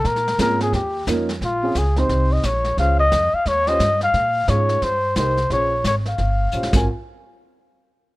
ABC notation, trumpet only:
X:1
M:4/4
L:1/8
Q:"Swing" 1/4=176
K:Bbdor
V:1 name="Trumpet"
B2 B A G2 z2 | F2 A c2 e d2 | f e2 f d e2 f- | f2 d2 c2 c2 |
d2 d f4 a | z8 |]